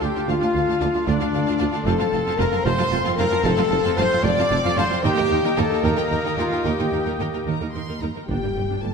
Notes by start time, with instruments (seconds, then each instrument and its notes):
Already playing: woodwind section D4 F4 A4 F5
0.00 tuba D2, double bass section D2, cello section D2, viola section D4 F4, french horn section G4, trumpet section G4, violin section F5 G5 A5
0.15 cello section D2, viola section D4 F4, violin section F5 A5
0.27 tuba D2, double bass section D2, cello section D2, viola section D4 F4, french horn section F4, trumpet section F4, violin section F5 A5
0.41 cello section D2, viola section D4 F4, violin section F5 A5
0.54 tuba D2, double bass section D2, cello section D2, viola section D4 F4, violin section F5 A5
0.66 cello section D2, viola section D4 F4, violin section F5 A5
0.80 tuba D2, double bass section D2, cello section D2, viola section D4 F4, violin section F5 A5
0.93 cello section D2, viola section D4 F4, violin section F5 A5
1.06 tuba D2, double bass section D2, cello section D2, french horn section D4, viola section D4 F4, trumpet section D4, violin section D5 F5 A5
1.20 cello section D2, viola section D4 F4, violin section F5 A5
1.32 tuba D2, double bass section D2, cello section D2, viola section D4 F4, violin section F5 A5
1.46 cello section D2, viola section D4 F4, violin section F5 A5
1.58 tuba D2, double bass section D2, cello section D2, viola section D4 F4, violin section F5 A5
1.73 cello section D2, viola section D4 F4, violin section F5 A5
1.83 double bass section F1, tuba F1, cello section F2, viola section C4 F4, woodwind section C4 F4 F5, french horn section A4, trumpet section A4, violin section F5 A5
1.99 cello section F2, viola section C4 F4, violin section F5 A5
2.13 tuba F1, double bass section F1, cello section F2, viola section C4 F4, violin section F5 A5
2.25 cello section F2, viola section C4 F4, violin section F5 A5
2.35 viola section C4 F4, french horn section A#4
2.39 tuba F1, double bass section F1, cello section F2, trumpet section A#4, violin section F5 A5 A#5
2.52 cello section F2, viola section C4 F4, violin section F5 A5
2.63 double bass section F1, tuba F1, cello section F2, viola section C4 F4, french horn section C5, trumpet section C5, violin section F5 A5 C6
2.78 cello section F2, viola section C4 F4, violin section F5 A5
2.91 double bass section F1, tuba F1, cello section F2, viola section C4 F4, violin section F5 A5
3.04 cello section F2, viola section C4 F4, violin section F5 A5
3.16 tuba F1, double bass section F1, cello section F2, viola section C4 F4, french horn section A#4, trumpet section A#4, violin section F5 A5 A#5
3.31 cello section F2, viola section C4 F4, violin section F5 A5
3.43 tuba F1, double bass section F1, cello section F2, viola section C4 F4, french horn section A4, trumpet section A4, violin section F5 A5
3.57 cello section F2, viola section C4 F4, violin section F5 A5
3.70 double bass section F1, tuba F1, cello section F2, viola section C4 F4, violin section F5 A5
3.82 cello section F2, viola section C4 F4, violin section F5 A5
3.96 tuba F1, double bass section F1, cello section F2, viola section C4 F4, french horn section C5, trumpet section C5, violin section F5 A5 C6
4.11 cello section F2, viola section C4 F4, violin section F5 A5
4.23 tuba F1, double bass section F1, cello section F2, viola section C4 F4, french horn section D5, trumpet section D5, violin section F5 A5 D6
4.38 cello section F2, viola section C4 F4, violin section F5 A5
4.51 tuba F1, double bass section F1, cello section F2, viola section C4 F4, violin section F5 A5
4.64 cello section F2, viola section C4 F4, violin section F5 A5
4.76 double bass section F1, tuba F1, cello section F2, viola section C4 F4, trumpet section C5, french horn section C5, violin section F5 A5 C6
4.91 cello section F2, viola section C4 F4, violin section F5 A5
5.02 double bass section D#2, tuba D#2, cello section D#2, woodwind section A#3 G4 A#4 D#5, viola section D#4 A#4, trumpet section G4, french horn section G4, violin section G5 A#5
5.16 cello section D#2, viola section D#4 A#4, violin section G5 A#5
5.30 tuba D#2, double bass section D#2, cello section D#2, viola section D#4 A#4, violin section G5 A#5
5.43 cello section D#2, viola section D#4 A#4, violin section G5 A#5
5.57 tuba D#2, cello section D#2, double bass section D#2, viola section D#4 A#4, trumpet section A4, french horn section A4, violin section G5 A5 A#5
5.70 cello section D#2, viola section D#4 A#4, violin section G5 A#5
5.83 tuba D#2, cello section D#2, double bass section D#2, viola section D#4 A#4, trumpet section A#4, french horn section A#4, violin section G5 A#5
5.96 cello section D#2, viola section D#4 A#4, violin section G5 A#5
6.10 tuba D#2, cello section D#2, double bass section D#2, viola section D#4 A#4, violin section G5 A#5
6.24 cello section D#2, viola section D#4 A#4, violin section G5 A#5
6.37 tuba D#2, double bass section D#2, cello section D#2, viola section D#4 A#4, french horn section F4, trumpet section F4, violin section F5 G5 A#5
6.51 cello section D#2, viola section D#4 A#4, violin section G5 A#5
6.64 tuba D#2, double bass section D#2, cello section D#2, viola section D#4 A#4, french horn section G4, trumpet section G4, violin section G5 A#5
6.78 cello section D#2, viola section D#4 A#4, violin section G5 A#5
6.91 tuba D#2, double bass section D#2, cello section D#2, viola section D#4 A#4, violin section G5 A#5
7.05 cello section D#2, viola section D#4 A#4, violin section G5 A#5
7.18 tuba D#2, double bass section D#2, cello section D#2, viola section D#4 A#4, violin section G5 A#5
7.33 cello section D#2, viola section D#4 A#4, violin section G5 A#5
7.46 tuba D#2, double bass section D#2, cello section D#2, viola section D#4 A#4, violin section A#5
7.61 cello section D#2, viola section D#4 A#4
7.73 tuba D#2, double bass section D#2, cello section D#2, viola section D#4 A#4, violin section C6
7.88 cello section D#2, viola section D#4 A#4
8.00 tuba D#2, double bass section D#2, cello section D#2, viola section D#4 A#4, violin section A#5
8.15 cello section D#2, viola section D#4 A#4
8.26 tuba G1, double bass section G1, viola section A#3 D4, french horn section G4, violin section G5, impact
8.30 cello section G2
8.43 cello section G2, viola section G3 A#3
8.55 tuba G1, double bass section G1, cello section G2, viola section D3 G3
8.70 cello section G2, viola section A#3 D4
8.81 tuba G1, double bass section G1, cello section G2, viola section G3 A#3, french horn section A4, violin section A5